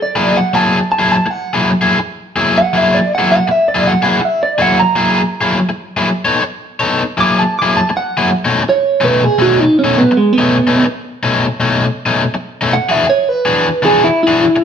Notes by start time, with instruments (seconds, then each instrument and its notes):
0.02 clean electric guitar D5
0.16 overdriven electric guitar F#3 A#3 E4 G#4
0.37 clean electric guitar F#5
0.54 overdriven electric guitar F#3 A#3 E4 G#4, clean electric guitar A5
0.92 clean electric guitar A5
0.99 overdriven electric guitar F#3 A#3 E4 G#4
1.12 clean electric guitar A5
1.26 muted overdriven electric guitar stroke
1.30 clean electric guitar F#5
1.54 overdriven electric guitar F#3 A#3 E4 G#4
1.81 overdriven electric guitar F#3 A#3 E4 G#4
1.98 muted overdriven electric guitar stroke
2.36 overdriven electric guitar F#3 A#3 E4 G#4
2.58 clean electric guitar F#5
2.73 overdriven electric guitar F#3 A#3 E4 G#4
2.77 clean electric guitar E5
2.95 clean electric guitar D5
3.15 overdriven electric guitar G#4, clean electric guitar F#5
3.19 overdriven electric guitar F#3 A#3 E4
3.32 clean electric guitar F#5
3.48 clean electric guitar E5, muted overdriven electric guitar stroke
3.68 clean electric guitar D5
3.75 overdriven electric guitar F#3 A#3 E4 G#4
3.87 clean electric guitar F#5
4.02 overdriven electric guitar F#3 A#3 E4 G#4, clean electric guitar F#5
4.20 muted overdriven electric guitar stroke
4.25 clean electric guitar E5
4.43 clean electric guitar D5
4.58 overdriven electric guitar F#3 A#3 E4 G#4, clean electric guitar F#5
4.79 clean electric guitar A#5
4.96 overdriven electric guitar F#3 A#3 E4 G#4
5.41 overdriven electric guitar F#3 A#3 E4 G#4
5.69 muted overdriven electric guitar stroke
5.97 overdriven electric guitar F#3 A#3 E4 G#4
6.25 overdriven electric guitar B3 D#4 A4 C#5
6.43 muted overdriven electric guitar stroke
6.80 overdriven electric guitar B3 D#4 A4 C#5
7.17 overdriven electric guitar F#3 A#3 E4 G#4, clean electric guitar D6
7.39 clean electric guitar A5
7.59 overdriven electric guitar E4 G#4, clean electric guitar D6
7.63 overdriven electric guitar F#3 A#3
7.77 clean electric guitar A5
7.89 muted overdriven electric guitar stroke
7.97 clean electric guitar F#5
8.17 overdriven electric guitar F#3 A#3 E4 G#4
8.45 overdriven electric guitar B2 A3 C#4 D#4
8.63 muted overdriven electric guitar stroke
8.69 clean electric guitar C#5
9.01 overdriven electric guitar B2 A3 C#4 D#4, clean electric guitar B4
9.24 clean electric guitar G#4
9.39 overdriven electric guitar B2 A3 C#4 D#4, clean electric guitar F#4
9.60 clean electric guitar D#4
9.79 clean electric guitar C#4
9.84 overdriven electric guitar B2 A3 C#4 D#4
9.98 clean electric guitar B3
10.11 muted overdriven electric guitar stroke
10.17 clean electric guitar G#3
10.33 clean electric guitar B3
10.38 overdriven electric guitar B2 A3 C#4 D#4
10.67 overdriven electric guitar B2 A3 C#4 D#4
10.85 muted overdriven electric guitar stroke
11.23 overdriven electric guitar B2 A3 C#4 D#4
11.60 overdriven electric guitar B2 A3 C#4 D#4
12.06 overdriven electric guitar B2 A3 C#4 D#4
12.34 muted overdriven electric guitar stroke
12.61 overdriven electric guitar B2 A3 C#4 D#4
12.73 clean electric guitar F#5
12.89 overdriven electric guitar E3 D4 F#4 G#4, clean electric guitar E5
13.06 clean electric guitar C#5, muted overdriven electric guitar stroke
13.29 clean electric guitar B4
13.45 overdriven electric guitar E3 D4 F#4 G#4
13.82 overdriven electric guitar E3 D4 F#4 G#4, clean electric guitar G#4
14.04 clean electric guitar E4
14.23 clean electric guitar E4
14.27 overdriven electric guitar E3 D4 F#4 G#4
14.56 muted overdriven electric guitar stroke